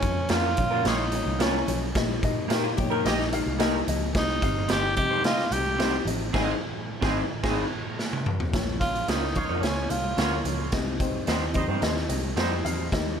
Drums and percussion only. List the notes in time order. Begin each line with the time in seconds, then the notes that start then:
0.02 kick, closed hi-hat
0.29 snare, closed hi-hat, muted conga
0.57 kick, closed hi-hat, high conga, low conga
0.85 snare, closed hi-hat, muted conga
0.99 muted conga
1.11 closed hi-hat, high conga
1.25 high conga
1.40 snare, closed hi-hat
1.52 muted conga, high conga
1.66 closed hi-hat, low conga
1.94 kick, snare, closed hi-hat, muted conga
2.08 muted conga, high conga
2.23 kick, closed hi-hat
2.50 snare, closed hi-hat
2.65 muted conga
2.78 kick, closed hi-hat, high conga, low conga
3.05 snare, closed hi-hat, muted conga
3.19 snare, muted conga
3.32 closed hi-hat, high conga
3.46 high conga
3.60 snare, closed hi-hat
3.73 muted conga, high conga
3.88 closed hi-hat, low conga
4.15 kick, snare, closed hi-hat
4.29 muted conga, high conga
4.42 kick, closed hi-hat
4.69 snare, closed hi-hat, muted conga
4.83 muted conga
4.96 kick, closed hi-hat, high conga, low conga
5.24 snare, closed hi-hat, muted conga
5.37 snare, muted conga
5.50 closed hi-hat, high conga
5.65 high conga
5.79 snare, closed hi-hat, muted conga
5.91 high conga
6.06 closed hi-hat, low conga
6.34 kick, snare, crash
7.02 kick, snare
7.43 kick, snare, crash
7.99 snare
8.13 high tom
8.26 mid tom
8.40 floor tom
8.53 kick, snare, closed hi-hat, muted conga
8.66 high conga
8.81 kick, closed hi-hat
8.94 closed hi-hat, high conga
9.08 snare, closed hi-hat
9.35 kick, closed hi-hat, high conga, low conga
9.63 snare, closed hi-hat, muted conga
9.90 closed hi-hat, high conga
10.03 high conga
10.18 snare, closed hi-hat, muted conga
10.31 high conga
10.45 closed hi-hat, low conga
10.72 kick, snare, closed hi-hat
10.85 muted conga, high conga
11.00 kick, closed hi-hat
11.13 high conga
11.27 snare, closed hi-hat
11.41 muted conga
11.54 kick, closed hi-hat, high conga, low conga
11.82 snare, closed hi-hat
11.97 snare
12.09 closed hi-hat, high conga
12.23 high conga
12.37 snare, closed hi-hat
12.50 high conga
12.65 closed hi-hat, low conga
12.92 kick, snare, closed hi-hat
13.06 muted conga, high conga